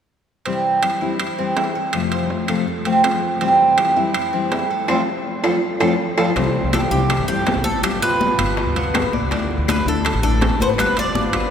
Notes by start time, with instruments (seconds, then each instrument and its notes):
0.45 nylon-string guitar C3 E3 G3 C4 E4, cuban tres C4, high timbale
0.83 nylon-string guitar E3 G3 C4 E4, cuban tres G4, high timbale, low timbale, claves
1.01 nylon-string guitar E3 G3 C4 E4, cuban tres E4
1.19 muted nylon-string guitar stroke, high timbale, claves
1.38 nylon-string guitar E3 G3 C4 E4, cuban tres C4
1.57 nylon-string guitar E3 G3 C4 E4, cuban tres E4, high timbale, low timbale
1.75 cuban tres A4
1.93 nylon-string guitar F2 C3 F3 A3 C4 F4, high timbale, claves
2.12 cuban tres C5, high timbale
2.30 nylon-string guitar F3 A3 C4 F4, low timbale
2.48 nylon-string guitar C3 F3 A3 C4 F4, cuban tres A4, high timbale, claves
2.67 muted nylon-string guitar stroke
2.85 nylon-string guitar C3 F3 A3 C4 F4, cuban tres C4, high timbale
3.04 nylon-string guitar F3 A3 C4 F4, cuban tres F4, high timbale, low timbale, claves
3.41 nylon-string guitar C3 E3 G3 C4 E4, cuban tres C4, high timbale
3.78 nylon-string guitar E3 G3 C4 E4, cuban tres G4, high timbale, low timbale, claves
3.96 nylon-string guitar E3 G3 C4 E4, cuban tres E4
4.14 muted nylon-string guitar stroke, high timbale, claves
4.33 nylon-string guitar E3 G3 C4 E4, cuban tres C4
4.52 nylon-string guitar E3 G3 C4 E4, cuban tres E4, high timbale, low timbale
4.70 cuban tres A4
4.88 nylon-string guitar F3 A3 C4, cuban tres C4 F4 A4, high timbale, claves
5.44 nylon-string guitar F3 A3 C4, cuban tres C4 F4 A4, high timbale, claves
5.80 nylon-string guitar F3 A3 C4, cuban tres C4 F4 A4, high timbale, claves
6.18 nylon-string guitar F3 A3 C4, cuban tres C4 F4 A4, high timbale, claves
6.36 upright bass C2, nylon-string guitar C3 E3 G3 C4 E4, cuban tres C4, high bongo, high conga, high timbale
6.55 high conga
6.64 upright bass C2
6.73 nylon-string guitar E3 G3 C4 E4, cuban tres G4 A4, high bongo, high conga, high timbale, low timbale, claves
6.91 upright bass C2, nylon-string guitar E3 G3 C4 E4, cuban tres G4, high conga
7.10 cuban tres E4, muted nylon-string guitar stroke, high bongo, high conga, high timbale, claves
7.19 upright bass G2
7.28 nylon-string guitar E3 G3 C4 E4, cuban tres G4, high conga
7.47 nylon-string guitar E3 G3 C4 E4, high bongo, low bongo, high conga, high timbale, low timbale
7.56 upright bass C2
7.64 upright bass A1, cuban tres A4, high conga
7.83 upright bass G1, nylon-string guitar G3 B3 F4, cuban tres G4, high bongo, high conga, high timbale, claves
8.02 cuban tres F4 B4, high conga, high timbale
8.11 upright bass G1
8.20 nylon-string guitar G3 B3 F4, high bongo, high conga, low timbale
8.39 upright bass G1, nylon-string guitar B3 F4, cuban tres B4, high bongo, high conga, high timbale, claves
8.57 cuban tres F4, muted nylon-string guitar stroke, high bongo, high conga
8.66 upright bass D2
8.76 cuban tres B3, nylon-string guitar B3 F4, high bongo, high conga, high timbale
8.94 nylon-string guitar G3 B3 F4, high bongo, low bongo, high conga, high timbale, low timbale, claves
9.03 upright bass G1
9.13 upright bass C2, cuban tres D5, high bongo, high conga
9.31 upright bass D2, nylon-string guitar D3 A3 D4 E4, cuban tres D4, high bongo, high conga, high timbale
9.50 high conga
9.58 upright bass D2
9.68 nylon-string guitar D3 A3 D4 E4, cuban tres B4 D5, high bongo, high conga, high timbale, low timbale, claves
9.86 upright bass D2, nylon-string guitar A3 D4 E4, cuban tres A4, high conga
10.05 cuban tres A4, muted nylon-string guitar stroke, high bongo, high conga, high timbale, claves
10.14 upright bass A1
10.23 nylon-string guitar A3 D4 E4, cuban tres A4 D5, high conga
10.41 nylon-string guitar D3 A3 D4 E4, high bongo, low bongo, high conga, high timbale, low timbale
10.50 upright bass D2
10.60 upright bass A1, cuban tres B3 C5, high conga
10.78 upright bass G1, nylon-string guitar G3 B3 F4, cuban tres B4, high bongo, high conga, high timbale, claves
10.97 cuban tres F4 D5, high conga, high timbale
11.06 upright bass G1
11.15 nylon-string guitar G3 B3 F4, high bongo, high conga, low timbale
11.33 upright bass G1, nylon-string guitar B3 F4, cuban tres B4, high bongo, high conga, high timbale, claves